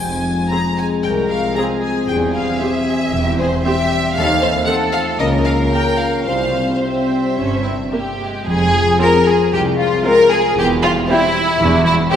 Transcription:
Already playing: double bass section F1, french horn section G#3, harp C4 C5, violin section G#5
0.00 cello section F2, harp F3, french horn section C4
0.25 harp C4
0.50 viola section C4 G#4, harp C5, violin section A#5
0.77 harp G#4, violin section G#5
1.03 double bass section C2, cello section C2, harp F4, violin section A#4 G5
1.28 harp C4, violin section F5
1.56 viola section C4 G#4, violin section G#4 A#5, harp C5
1.82 violin section G#5
2.07 double bass section E1, cello section E2, harp E3, french horn section G3, violin section G5
2.34 harp C4, violin section F5
2.59 viola section C4 G4, harp C5, violin section E5
2.86 harp G4
3.11 double bass section E1, cello section E2, harp E3, violin section G4
3.37 harp C4, violin section G#4 C5
3.63 viola section C4 G4, violin section G4 E5, harp C5
3.89 harp G4
4.14 double bass section D#2, cello section D#2, harp D#3, french horn section A3 C4, violin section A4 F5
4.41 harp C4, violin section C5
4.66 viola section C4 A4, harp A4, violin section A4 F#5
4.92 harp F4, violin section F5
5.19 cello section C#2, double bass section C#2, harp C#3, french horn section A#3 C#4, violin section A#4 D#5
5.44 harp A#3, violin section F5
5.71 viola section A#3 A#4, harp A#4, violin section G5
5.98 harp F4, violin section F5
6.25 double bass section C2, cello section C2, harp C3, french horn section G3 C4, violin section C5 F5
6.54 harp G3
6.74 violin section F5
6.81 viola section C4, harp C5, violin section E5
7.09 harp G4
7.36 double bass section G1, cello section G2, harp C4, viola section C#4
7.62 harp G3, viola section C4, violin section E4
7.91 viola section A#3, violin section G4, harp C5
8.19 viola section G#3, harp G4
8.46 double bass section F1, cello section F2, harp F3, violin section G#4
8.73 harp F4
8.99 french horn section G#3 C4, viola section C4 F4, harp G#4, violin section A#4 C5
9.26 violin section G#4, harp C5
9.51 double bass section C2, cello section C2, harp G#3, violin section G4
9.77 harp F4, violin section F4
10.03 french horn section G#3 C4, viola section C4 F4, harp G#4, violin section A#4 C5
10.30 violin section G#4, harp C5
10.56 double bass section E1, cello section E2, harp E3, violin section G4
10.82 harp G3, violin section F4
11.07 french horn section G3 C4, viola section C4 G4, violin section E4 C5, harp C5
11.34 harp G4
11.59 double bass section E1, cello section E2, harp E3
11.85 harp G3, violin section E4
12.11 french horn section G3 C4, viola section C4 G4, violin section G4 C5, harp C5

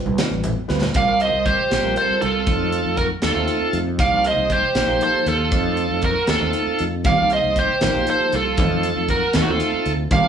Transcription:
Already playing: tine electric piano G3 C4 F4 B4
0.06 fretless electric bass C2, low conga
0.18 snare, closed hi-hat, high conga, low conga
0.31 fretless electric bass A1
0.44 closed hi-hat, low conga
0.68 fretless electric bass D2, tine electric piano G3 C4 F4 B4, snare
0.82 snare, low conga
0.94 fretless electric bass C2, tine electric piano G3 C4 F4 A#4, overdriven electric guitar D5, lead electric guitar F5, kick, closed hi-hat
1.20 overdriven electric guitar C5, lead electric guitar D#5, closed hi-hat
1.33 fretless electric bass C2
1.46 overdriven electric guitar G4, lead electric guitar C5, kick, closed hi-hat
1.70 fretless electric bass A#1, tine electric piano G3 C4 F4 G4, snare, closed hi-hat
1.83 fretless electric bass A#1, tine electric piano G3 C4 F4 A#4
1.96 lead electric guitar C5, closed hi-hat
2.01 overdriven electric guitar A4
2.10 muted fretless electric bass stroke
2.22 fretless electric bass C2, lead electric guitar A4, closed hi-hat
2.26 overdriven electric guitar F4
2.47 fretless electric bass F2, tine electric piano F#3 A3 C4 D#4, kick, closed hi-hat
2.72 closed hi-hat
2.85 fretless electric bass F2
2.97 lead electric guitar A#4, kick, closed hi-hat
3.01 overdriven electric guitar F#4
3.22 fretless electric bass D#2, tine electric piano A3 C4 D#4 F#4, lead electric guitar A4, snare, closed hi-hat
3.27 overdriven electric guitar F4
3.34 fretless electric bass D#2, tine electric piano A3 C4 D#4 F4
3.48 closed hi-hat
3.61 muted fretless electric bass stroke
3.73 fretless electric bass F2, closed hi-hat
3.97 fretless electric bass C2, tine electric piano F3 A#3 D#4 G4, lead electric guitar F5, kick, closed hi-hat
4.02 overdriven electric guitar D5
4.24 overdriven electric guitar C5, lead electric guitar D#5, closed hi-hat
4.37 fretless electric bass C2
4.50 overdriven electric guitar G4, lead electric guitar C5, kick, closed hi-hat
4.75 fretless electric bass A#1, tine electric piano F3 A#3 D#4 G4, snare, closed hi-hat
4.87 fretless electric bass A#1, tine electric piano F3 A#3 D#4 G4
5.01 overdriven electric guitar A4, lead electric guitar C5, closed hi-hat
5.14 muted fretless electric bass stroke
5.26 fretless electric bass D#2, overdriven electric guitar F4, lead electric guitar A4, closed hi-hat
5.50 fretless electric bass F2, tine electric piano F#3 A3 C4 D#4, kick, closed hi-hat
5.77 closed hi-hat
5.90 fretless electric bass F2
6.02 lead electric guitar A#4, kick, closed hi-hat
6.06 overdriven electric guitar F#4
6.27 fretless electric bass D#2, tine electric piano A3 C4 D#4 F#4, overdriven electric guitar F4, lead electric guitar A4, snare, closed hi-hat
6.40 fretless electric bass D#2, tine electric piano A3 C4 D#4 A4
6.53 closed hi-hat
6.67 muted fretless electric bass stroke
6.79 fretless electric bass F2, closed hi-hat
7.04 fretless electric bass C2, tine electric piano F3 A#3 D#4 G4, overdriven electric guitar D5, lead electric guitar F5, kick, closed hi-hat, high conga, low conga
7.30 overdriven electric guitar C5, lead electric guitar D#5, closed hi-hat
7.44 fretless electric bass C2
7.56 overdriven electric guitar G4, lead electric guitar C5, kick, closed hi-hat
7.81 fretless electric bass A#1, tine electric piano F3 A#3 D#4 A#4, snare, closed hi-hat, high conga, low conga
7.94 fretless electric bass A#1, tine electric piano F3 A#3 D#4 G4
8.07 overdriven electric guitar A4, lead electric guitar C5, closed hi-hat
8.20 muted fretless electric bass stroke
8.32 fretless electric bass C2, overdriven electric guitar F4, lead electric guitar A4, closed hi-hat
8.57 fretless electric bass F2, tine electric piano F#3 A3 C4 D#4, kick, closed hi-hat, high conga, low conga
8.71 low conga
8.83 closed hi-hat
8.96 fretless electric bass F2
9.08 overdriven electric guitar F#4, lead electric guitar A#4, kick, closed hi-hat
9.33 fretless electric bass D#2, tine electric piano A3 C4 D#4 A4, overdriven electric guitar F4, lead electric guitar A4, snare, closed hi-hat, high conga, low conga
9.42 overdriven electric guitar D#4, lead electric guitar F#4
9.47 fretless electric bass D#2, tine electric piano A3 C4 D#4 F4
9.51 overdriven electric guitar F4, lead electric guitar A4
9.60 closed hi-hat
9.73 muted fretless electric bass stroke
9.86 fretless electric bass D2, closed hi-hat
10.11 fretless electric bass C2, tine electric piano F3 A#3 D#4 G4, lead electric guitar F5, kick, closed hi-hat, high conga, low conga
10.15 overdriven electric guitar D5
10.25 low conga

